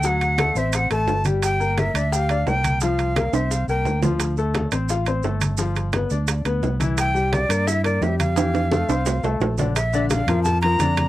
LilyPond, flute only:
\new Staff \with { instrumentName = "Flute" } { \time 4/4 \key c \mixolydian \tempo 4 = 173 fis''4. e''8 fis''8 a''4 r8 | g''4 e''4 f''4 g''4 | f''4. e''8 f''8 g''4 r8 | r1 |
r1 | g''4 d''4 e''8 d''8 e''8 f''8~ | f''2. r4 | e''4 f''4 a''8 bes''4. | }